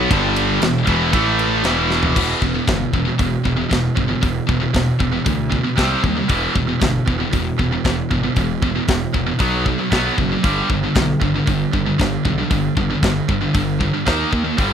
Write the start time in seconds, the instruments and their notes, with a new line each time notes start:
Already playing: distorted electric guitar F#3 B3
0.09 picked electric bass G1, distorted electric guitar G2 D3 G3, kick, ride
0.36 ride
0.60 picked electric bass E1, distorted electric guitar E2 B2, snare, ride
0.87 picked electric bass E1, distorted electric guitar E2 B2 E3, kick, ride
1.13 picked electric bass A1, distorted electric guitar A2 E3 A3, kick, ride
1.39 ride
1.64 picked electric bass E1, distorted electric guitar E2 B2 E3, snare, ride
1.91 snare
2.03 floor tom
2.15 picked electric bass E1, distorted electric guitar E2 B2 E3, kick, crash
2.42 picked electric bass E1, distorted electric guitar E2 B2, kick
2.54 distorted electric guitar E2 B2
2.67 picked electric bass G1, distorted electric guitar E2 B2, kick, snare, open hi-hat
2.93 picked electric bass E1, distorted electric guitar E2 B2, kick
3.05 distorted electric guitar E2 B2
3.18 picked electric bass E1, distorted electric guitar E2 B2, kick, open hi-hat
3.44 picked electric bass E1, distorted electric guitar E2 B2, kick
3.56 distorted electric guitar E2 B2
3.70 picked electric bass E1, distorted electric guitar E2 B2, kick, snare, open hi-hat
3.96 picked electric bass G1, distorted electric guitar E2 B2, kick
4.08 distorted electric guitar E2 B2
4.21 picked electric bass E1, distorted electric guitar E2 B2, kick, open hi-hat
4.47 picked electric bass E1, distorted electric guitar E2 B2, kick
4.60 distorted electric guitar E2 B2
4.74 picked electric bass E1, distorted electric guitar E2 B2, kick, snare, open hi-hat
4.99 picked electric bass E1, distorted electric guitar E2 B2, kick
5.12 distorted electric guitar E2 B2
5.26 picked electric bass D2, distorted electric guitar E2 B2, kick, open hi-hat
5.51 distorted electric guitar E2 B2, kick
5.64 distorted electric guitar E2 B2
5.77 picked electric bass C2, distorted electric guitar C3 G3 C4, kick, snare, open hi-hat
6.03 picked electric bass D#2, distorted electric guitar C3 G3, kick
6.17 distorted electric guitar C3 G3
6.29 picked electric bass E1, distorted electric guitar E2 B2 E3, kick, open hi-hat
6.56 picked electric bass E1, distorted electric guitar E2 B2, kick
6.69 distorted electric guitar E2 B2
6.81 picked electric bass G1, distorted electric guitar E2 B2, kick, snare, open hi-hat
7.07 picked electric bass E1, distorted electric guitar E2 B2, kick
7.20 distorted electric guitar E2 B2
7.33 picked electric bass E1, distorted electric guitar E2 B2, kick, open hi-hat
7.59 picked electric bass E1, distorted electric guitar E2 B2, kick
7.72 distorted electric guitar E2 B2
7.84 picked electric bass E1, distorted electric guitar E2 B2, kick, snare, open hi-hat
8.11 picked electric bass G1, distorted electric guitar E2 B2, kick
8.23 distorted electric guitar E2 B2
8.36 picked electric bass E1, distorted electric guitar E2 B2, kick, open hi-hat
8.62 picked electric bass E1, distorted electric guitar E2 B2, kick
8.76 distorted electric guitar E2 B2
8.88 picked electric bass E1, distorted electric guitar E2 B2, kick, snare, open hi-hat
9.14 picked electric bass E1, distorted electric guitar E2 B2, kick
9.27 distorted electric guitar E2 B2
9.39 picked electric bass B1, distorted electric guitar B2 F#3 B3, kick, open hi-hat
9.66 distorted electric guitar B2 F#3, kick
9.79 distorted electric guitar B2 F#3
9.92 picked electric bass B1, distorted electric guitar B2 F#3 B3, kick, snare, open hi-hat
10.18 picked electric bass F#1, distorted electric guitar B2 F#3, kick
10.32 distorted electric guitar B2 F#3
10.44 picked electric bass G1, distorted electric guitar G2 D3 G3, kick, open hi-hat
10.70 picked electric bass G1, distorted electric guitar G2 D3, kick
10.84 distorted electric guitar G2 D3
10.95 picked electric bass B1, distorted electric guitar G2 D3, kick, snare, open hi-hat
11.21 picked electric bass G1, distorted electric guitar G2 D3, kick
11.36 distorted electric guitar G2 D3
11.47 picked electric bass G1, distorted electric guitar G2 D3, kick, open hi-hat
11.73 picked electric bass G1, distorted electric guitar G2 D3, kick
11.86 distorted electric guitar G2 D3
11.99 picked electric bass G1, distorted electric guitar G2 D3, kick, snare, open hi-hat
12.25 picked electric bass B1, distorted electric guitar G2 D3, kick
12.38 distorted electric guitar G2 D3
12.51 picked electric bass G1, distorted electric guitar G2 D3, kick, open hi-hat
12.77 picked electric bass G1, distorted electric guitar G2 D3, kick
12.90 distorted electric guitar G2 D3
13.02 picked electric bass G1, distorted electric guitar G2 D3, kick, snare, open hi-hat
13.29 picked electric bass G1, distorted electric guitar G2 D3, kick
13.41 distorted electric guitar G2 D3
13.54 picked electric bass G1, distorted electric guitar G2 D3, kick, open hi-hat
13.80 distorted electric guitar G2 D3, kick
13.94 distorted electric guitar G2 D3
14.06 picked electric bass D#2, distorted electric guitar D#3 A#3 D#4, kick, snare, open hi-hat
14.32 picked electric bass D#2, distorted electric guitar D#3 A#3, kick
14.44 distorted electric guitar D#3 A#3
14.58 picked electric bass G1, distorted electric guitar G2 D3 G3, kick, open hi-hat